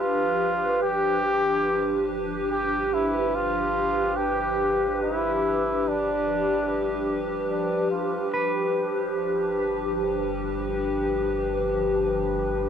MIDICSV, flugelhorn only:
0, 0, Header, 1, 2, 480
1, 0, Start_track
1, 0, Tempo, 500000
1, 12184, End_track
2, 0, Start_track
2, 0, Title_t, "Flugelhorn"
2, 0, Program_c, 0, 56
2, 0, Note_on_c, 0, 65, 89
2, 787, Note_off_c, 0, 65, 0
2, 792, Note_on_c, 0, 67, 105
2, 2086, Note_off_c, 0, 67, 0
2, 2410, Note_on_c, 0, 67, 92
2, 2822, Note_on_c, 0, 64, 78
2, 2836, Note_off_c, 0, 67, 0
2, 3217, Note_on_c, 0, 65, 97
2, 3231, Note_off_c, 0, 64, 0
2, 3996, Note_on_c, 0, 67, 84
2, 4010, Note_off_c, 0, 65, 0
2, 4785, Note_off_c, 0, 67, 0
2, 4829, Note_on_c, 0, 64, 77
2, 5647, Note_on_c, 0, 62, 80
2, 5662, Note_off_c, 0, 64, 0
2, 6952, Note_off_c, 0, 62, 0
2, 7214, Note_on_c, 0, 62, 70
2, 7567, Note_off_c, 0, 62, 0
2, 7592, Note_on_c, 0, 65, 59
2, 7956, Note_off_c, 0, 65, 0
2, 12184, End_track
0, 0, End_of_file